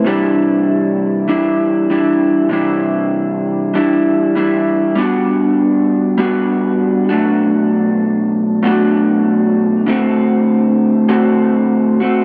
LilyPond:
\new Staff \with { instrumentName = "Clean electric guitar" } { \time 4/4 \key c \lydian \tempo 4 = 98 <c e g d' e'>2 <e g d' e'>4 <e g d' e'>4 | <c e g d' e'>2 <e g d' e'>4 <e g d' e'>4 | <g b d' fis'>2 <g b d' fis'>4. <b, fis a d' fis'>8~ | <b, fis a d' fis'>2 <b, fis a d' fis'>2 |
<d a c' fis'>2 <d a c' fis'>4. <a c' fis'>8 | }